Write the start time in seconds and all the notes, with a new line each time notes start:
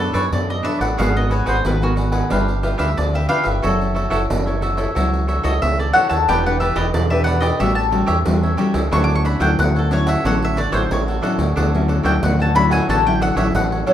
Already playing: B3 D4
0.00 D4 A4 B4 C#5 D5
0.13 F#2 D4 A4 B4 C#5 D5, pandeiro
0.32 F#2 F#3 D4 A4 C#5 D5, pandeiro
0.49 A4 B4 D5 D#5, pandeiro
0.63 D4 A4 B4 C#5 D5 E5, pandeiro
0.79 A1 A4 B4 D5 F#5, pandeiro
0.97 G#1 G#3 B3 F#4 G#4 A#4 B4 F5 F#5, pandeiro
1.16 B3 F#4 A#4 D#5, pandeiro
1.30 F#4 G#4 B4 C#5 F#5, pandeiro
1.46 G#1 F#4 G#4 B4 C5 F#5, pandeiro
1.65 G#1 D#3 B3 F#4 A#4 B4, pandeiro
1.81 B3 F#4 G#4 A#4 B4 F#5, pandeiro
1.96 F#4 G#4 B4 F#5, pandeiro
2.12 G#4 B4 F#5, pandeiro
2.30 G1 G3 D4 F4 G4 B4 E5 F5, pandeiro
2.48 pandeiro
2.63 D4 F4 G4 B4 E5 F5, pandeiro
2.78 D2 D4 G4 B4 E5 F5, pandeiro
2.97 D2 D3 D5, pandeiro
3.13 G4 B4 E5 F5, pandeiro
3.28 D4 F4 G4 B4 E5 F5, pandeiro
3.44 G1 G4 B4 E5 F5, pandeiro
3.62 F#1 F#3 E4 F#4 A4 C#5 E5, pandeiro
3.81 pandeiro
3.94 F#4 A4 C#5 E5, pandeiro
4.10 F#1 E4 F#4 A4 C#5 E5, pandeiro
4.30 F#1 C#3, pandeiro
4.46 E4 A4 C#5 E5, pandeiro
4.61 F#4 A4 C#5 E5, pandeiro
4.77 E4 A4 C#5 E5, pandeiro
4.95 C#2 F#3 E4 F#4 A4 C#5 E5, pandeiro
5.13 pandeiro
5.27 F#4 A4 C#5 E5, pandeiro
5.43 C#2 E4 F#4 A4 C#5 D#5 E5, pandeiro
5.62 C#2 C#3 E5, pandeiro
5.78 A4 C#5 D5 E5, pandeiro
5.93 E4 F#4 A4 C#5 E5 F#5, pandeiro
6.09 D#2 A4 C#5 E5 A5, pandeiro
6.28 E1 E3 D4 E4 G4 B4 D5 G5, pandeiro
6.46 D4 G4 B4 F#5, pandeiro
6.60 D4 E4 G4 B4 D5 E5, pandeiro
6.75 E1 E4 G4 B4 D5 D#5, pandeiro
6.94 E2 B2 D5, pandeiro
7.10 D4 G4 B4 D5 E5, pandeiro
7.24 E4 G4 B4 D5 F#5, pandeiro
7.40 G4 B4 D5 D#5, pandeiro
7.59 A1 A2 G3 C#4 F#4 G4 A4 C#5 E5, pandeiro
7.75 A5, pandeiro
7.91 G3 C#4 F#4 G4 A4 C#5 E5, pandeiro
8.06 E2 G4 A4 C#5 E5, pandeiro
8.25 E2 E3 G3 C#4 F#4, pandeiro
8.43 A4 C#5 E5, pandeiro
8.57 G3 C#4 F#4 G4 A4 C#5 E5, pandeiro
8.73 C#2 A4 C#5 E5, pandeiro
8.91 D2 D3 F#3 C#4 D4 E4 A4 C#5 F#5 C#6, pandeiro
9.04 D6
9.10 pandeiro
9.15 C#6
9.24 D4 A4 C#5 F#5 B5, pandeiro
9.40 D2 F#3 C#4 D4 E4 A4 C#5 F#5 G5, pandeiro
9.59 D2 A2 F#5, pandeiro
9.75 A4 C#5 F#5, pandeiro
9.91 F#3 C#4 D4 E4 A4 C#5 F#5, pandeiro
10.06 A4 C#5 E5 F#5, pandeiro
10.25 A1 D3 F#3 C#4 D4 E4 A4 C#5 F#5, pandeiro
10.42 E5, pandeiro
10.56 D4 A4 C#5 D5 F#5, pandeiro
10.72 A1 F#3 C#4 D4 E4 A4 C5 C#5 F#5, pandeiro
10.91 A1 A2 C#5, pandeiro
11.07 A4 C#5 F#5, pandeiro
11.22 F#3 C#4 D4 E4 A4 C#5 F#5, pandeiro
11.38 D2 A4 C#5 F#5, pandeiro
11.56 D2 D3 D4 A4 C#5 F#5, pandeiro
11.74 F#3 C#4 E4, pandeiro
11.88 D4 A4 C#5 F#5, pandeiro
12.03 D2 F#3 C#4 D4 E4 A4 C#5 F#5 G5, pandeiro
12.23 D2 A2 F#5, pandeiro
12.39 A4 C#5 F#5 A5, pandeiro
12.55 F#3 C#4 D4 E4 A4 C#5 F#5 B5, pandeiro
12.71 A4 C#5 F#5 G#5, pandeiro
12.89 A1 D3 D4 A4 C#5 F#5 A5, pandeiro
13.06 F#3 C#4 E4 G5, pandeiro
13.20 D4 A4 C#5 F#5, pandeiro
13.36 A1 F#3 C#4 D4 E4 A4 C#5 E5 F#5, pandeiro
13.55 A1 A2 F#5, pandeiro
13.71 A4 C#5 F#5, pandeiro
13.86 F#3 C#4 D4 E4 A4 C#5 F#5, pandeiro